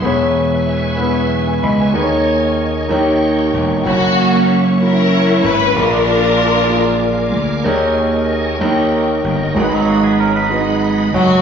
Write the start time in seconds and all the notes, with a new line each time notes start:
Already playing: E5
0.02 E1 E3 B3 E4 G#4 B4 C#5 G#5 C#6
0.97 B3 E4 G#4 B4
1.47 B4 G#5
1.63 C#2 D#5 B5
1.80 B4 G#5
1.93 D#2 D#3 A#3 D#4 G#4 B4 C#5 D#5 C#6
2.03 C#5
2.88 D#2 D#3 A#3 D#4 G4 C#5 G5
3.54 E1
3.84 F#1 A#3 C#4 E4 F#4 E5 F#5
3.88 C#5
4.79 A#3 C#4 E4 F#4 A#4 C#5
5.44 G#1 B4
5.75 A#1 A#2 A#3 D4 F4 G#4 A#4 F5 G#5 D6
5.79 D5
6.68 A#3 F4 G#4 D5
7.34 D2
7.63 D#2 D#3 A#3 D#4 G#4 A#4 C#5 D#5 C#6
8.58 D#2 D#3 A#3 D#4 E4 C#5 D#5 G5
8.68 G4
9.24 G1
9.54 G#1 G#2 G#3 D#4 F#4 G#4 A#4 F#5 B5
9.64 B4
9.72 F#3 D#4
9.88 A#3 F#4
10.04 B3 G#4
10.20 C#4 A#4
10.36 D#4 B4
10.49 G#3 D#4 F#4 B4
11.13 F#1 F#3 F#4